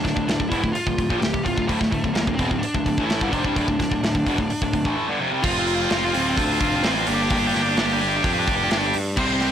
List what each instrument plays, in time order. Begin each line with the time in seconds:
Already playing: lead electric guitar D4
0.04 picked electric bass D1, distorted electric guitar D2 A2, kick, snare, open hi-hat
0.16 picked electric bass D1, distorted electric guitar D2 A2, kick
0.28 picked electric bass D1, distorted electric guitar D2 A2, snare, open hi-hat
0.40 picked electric bass D1, distorted electric guitar D2 A2, kick
0.50 picked electric bass E1, distorted electric guitar E2 B2, lead electric guitar E4, kick, open hi-hat
0.63 picked electric bass D1, distorted electric guitar D2 A2, kick
0.73 lead electric guitar F4, muted distorted electric guitar stroke, muted picked electric bass stroke, open hi-hat
0.87 picked electric bass D1, distorted electric guitar D2 A2, kick
0.98 picked electric bass D1, distorted electric guitar D2 A2, kick, open hi-hat
1.10 picked electric bass A#1, distorted electric guitar A#2 F3, kick
1.19 picked electric bass D1, distorted electric guitar D2 A2, lead electric guitar G4, open hi-hat
1.23 snare
1.33 picked electric bass D1, distorted electric guitar D2 A2, kick
1.43 picked electric bass D1, distorted electric guitar D2 A2, lead electric guitar F4, kick, open hi-hat
1.56 picked electric bass D1, distorted electric guitar D2 A2, kick
1.66 picked electric bass D1, distorted electric guitar D2 A2, lead electric guitar A3, kick, open hi-hat
1.80 picked electric bass D1, distorted electric guitar D2 A2, kick, snare
1.92 picked electric bass D1, distorted electric guitar D2 A2, kick, open hi-hat
2.04 picked electric bass D1, distorted electric guitar D2 A2, kick
2.14 picked electric bass D1, distorted electric guitar D2 A2, lead electric guitar A#3, snare, open hi-hat
2.27 picked electric bass D1, distorted electric guitar D2 A2, kick
2.35 distorted electric guitar E2, lead electric guitar C4, kick, open hi-hat
2.39 picked electric bass E1, distorted electric guitar B2
2.51 picked electric bass D1, distorted electric guitar D2 A2, kick
2.59 lead electric guitar D4
2.63 muted picked electric bass stroke, muted distorted electric guitar stroke, open hi-hat
2.75 picked electric bass D1, distorted electric guitar D2 A2, kick
2.86 picked electric bass D1, distorted electric guitar D2 A2, kick, open hi-hat
2.98 picked electric bass A1, distorted electric guitar A2 E3 A3, kick
3.05 lead electric guitar E4
3.10 snare, open hi-hat
3.21 picked electric bass G1, distorted electric guitar G2 D3, kick
3.31 picked electric bass F1, distorted electric guitar F2 C3, lead electric guitar D4, kick, open hi-hat
3.44 picked electric bass C2, distorted electric guitar C3 G3, kick
3.56 picked electric bass D1, distorted electric guitar D2 A2, kick, open hi-hat
3.68 picked electric bass D1, distorted electric guitar D2 A2, kick
3.79 picked electric bass D1, distorted electric guitar D2 A2, kick, snare, open hi-hat
3.91 picked electric bass D1, distorted electric guitar D2 A2, kick
4.03 picked electric bass D1, distorted electric guitar D2 A2, snare, open hi-hat
4.15 picked electric bass D1, distorted electric guitar D2 A2, kick
4.27 picked electric bass E1, distorted electric guitar E2 B2, kick, open hi-hat
4.38 picked electric bass D1, distorted electric guitar D2 A2, kick
4.50 muted picked electric bass stroke, muted distorted electric guitar stroke, open hi-hat
4.62 picked electric bass D1, distorted electric guitar D2 A2, kick
4.73 picked electric bass D1, distorted electric guitar D2 A2, kick, open hi-hat
4.85 picked electric bass A1, distorted electric guitar A2 E3 A3, kick
5.09 distorted electric guitar G2 D3
5.21 distorted electric guitar F2 C3
5.32 distorted electric guitar C3 G3
5.43 picked electric bass F1, distorted electric guitar C4 F4, lead electric guitar F4, kick, crash
5.51 distorted electric guitar C4 F4
5.59 distorted electric guitar C4 F4
5.67 distorted electric guitar C4 F4, open hi-hat
5.75 distorted electric guitar C4 F4
5.82 distorted electric guitar C4 F4
5.90 picked electric bass F1, distorted electric guitar C4 F4, snare, open hi-hat
5.98 distorted electric guitar C4 F4
6.05 distorted electric guitar C4 F4
6.13 picked electric bass D1, distorted electric guitar C4 F4, lead electric guitar C4, open hi-hat
6.21 distorted electric guitar C4 F4
6.28 distorted electric guitar C4 F4
6.37 picked electric bass D2, distorted electric guitar C4 F4, lead electric guitar D4, kick, open hi-hat
6.44 distorted electric guitar C4 F4
6.53 distorted electric guitar C4 F4
6.60 picked electric bass F1, distorted electric guitar C4 F4, kick, open hi-hat
6.68 distorted electric guitar C4 F4
6.75 distorted electric guitar C4 F4
6.83 picked electric bass A1, lead electric guitar C4, distorted electric guitar C4 F4, snare, open hi-hat
6.91 distorted electric guitar C4 F4
6.99 distorted electric guitar C4 F4
7.06 picked electric bass G1, lead electric guitar A#3, distorted electric guitar D4 G4, open hi-hat
7.15 distorted electric guitar D4 G4
7.22 distorted electric guitar D4 G4
7.30 picked electric bass G1, distorted electric guitar D4 G4, kick, open hi-hat
7.38 distorted electric guitar D4 G4
7.47 distorted electric guitar D4 G4
7.54 picked electric bass G1, distorted electric guitar D4 G4, snare, open hi-hat
7.62 distorted electric guitar D4 G4
7.69 distorted electric guitar D4 G4
7.77 picked electric bass G1, distorted electric guitar D4 G4, snare, open hi-hat
7.86 distorted electric guitar D4 G4
7.93 distorted electric guitar D4 G4
8.00 distorted electric guitar D4 G4, open hi-hat
8.08 distorted electric guitar D4 G4
8.16 distorted electric guitar D4 G4
8.23 picked electric bass F2, distorted electric guitar D4 G4, kick, open hi-hat
8.31 distorted electric guitar D4 G4
8.39 distorted electric guitar D4 G4
8.48 picked electric bass F1, distorted electric guitar D4 G4, kick, open hi-hat
8.55 distorted electric guitar D4 G4
8.63 distorted electric guitar D4 G4
8.70 picked electric bass G1, distorted electric guitar D4 G4, snare, open hi-hat
8.78 distorted electric guitar D4 G4
8.86 distorted electric guitar D4 G4
8.94 picked electric bass G2, open hi-hat
9.16 picked electric bass C2, lead electric guitar C4, distorted electric guitar G4 C5, kick, crash
9.26 distorted electric guitar G4 C5
9.32 distorted electric guitar G4 C5
9.40 distorted electric guitar G4 C5, snare, open hi-hat
9.48 distorted electric guitar G4